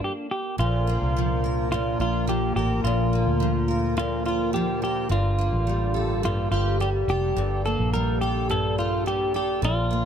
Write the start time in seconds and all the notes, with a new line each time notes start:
Already playing: A#3 D4
0.04 G4
0.31 G4
0.57 A#1 A#2 D3 F3 A#3 F4 A#4
0.87 A#3
1.02 C2
1.17 F3
1.44 A#4
1.72 A#2 F4
2.00 A#1 F4
2.27 F3 G4
2.56 A1 G4 A#4
2.84 A#1 A#2 F4
3.13 A#3
3.27 D2
3.40 F3
3.68 A#4
3.97 A#2 F4
4.25 F4
4.53 F3 G4
4.82 G4 A#4
5.08 G1 G2 G3 F4 G4
5.38 A#3
5.53 A1
5.67 G3
5.94 A4
6.23 G2 F4
6.51 G1 F4 G4
6.80 G3 G4
7.08 F1 G4 A4
7.36 G1 G2 A4
7.65 A#3 A4
7.79 A#1
7.93 G3 A#4
8.21 G4 A4
8.49 G2 A4
8.78 F4 G4
9.06 G3 G4
9.34 G4 A4
9.62 A#1 A#2 D3 F3 F4 A#4
9.91 A#3